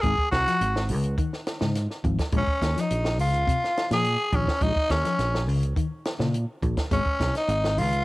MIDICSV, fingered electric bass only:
0, 0, Header, 1, 3, 480
1, 0, Start_track
1, 0, Key_signature, -5, "minor"
1, 0, Tempo, 572519
1, 28, Time_signature, 4, 2, 24, 8
1, 6746, End_track
2, 0, Start_track
2, 0, Title_t, "Fingered electric bass"
2, 0, Program_c, 0, 33
2, 32, Note_on_c, 0, 32, 100
2, 137, Note_off_c, 0, 32, 0
2, 269, Note_on_c, 0, 36, 84
2, 375, Note_off_c, 0, 36, 0
2, 510, Note_on_c, 0, 32, 89
2, 752, Note_on_c, 0, 37, 95
2, 765, Note_off_c, 0, 32, 0
2, 959, Note_off_c, 0, 37, 0
2, 1354, Note_on_c, 0, 44, 82
2, 1562, Note_off_c, 0, 44, 0
2, 1714, Note_on_c, 0, 32, 104
2, 1819, Note_off_c, 0, 32, 0
2, 1950, Note_on_c, 0, 34, 97
2, 2056, Note_off_c, 0, 34, 0
2, 2196, Note_on_c, 0, 39, 87
2, 2300, Note_off_c, 0, 39, 0
2, 2437, Note_on_c, 0, 34, 86
2, 2674, Note_off_c, 0, 34, 0
2, 2674, Note_on_c, 0, 37, 99
2, 2880, Note_off_c, 0, 37, 0
2, 3276, Note_on_c, 0, 46, 82
2, 3483, Note_off_c, 0, 46, 0
2, 3625, Note_on_c, 0, 34, 108
2, 3734, Note_off_c, 0, 34, 0
2, 3874, Note_on_c, 0, 34, 103
2, 3979, Note_off_c, 0, 34, 0
2, 4108, Note_on_c, 0, 39, 80
2, 4215, Note_off_c, 0, 39, 0
2, 4348, Note_on_c, 0, 34, 88
2, 4595, Note_off_c, 0, 34, 0
2, 4595, Note_on_c, 0, 37, 101
2, 4801, Note_off_c, 0, 37, 0
2, 5194, Note_on_c, 0, 46, 85
2, 5402, Note_off_c, 0, 46, 0
2, 5557, Note_on_c, 0, 34, 104
2, 5661, Note_off_c, 0, 34, 0
2, 5796, Note_on_c, 0, 32, 99
2, 5900, Note_off_c, 0, 32, 0
2, 6037, Note_on_c, 0, 36, 81
2, 6141, Note_off_c, 0, 36, 0
2, 6273, Note_on_c, 0, 32, 101
2, 6512, Note_on_c, 0, 37, 90
2, 6524, Note_off_c, 0, 32, 0
2, 6720, Note_off_c, 0, 37, 0
2, 6746, End_track
3, 0, Start_track
3, 0, Title_t, "Muted fingered electric bass strokes"
3, 159, Note_on_c, 9, 29, 32
3, 243, Note_off_c, 9, 29, 0
3, 6746, End_track
0, 0, End_of_file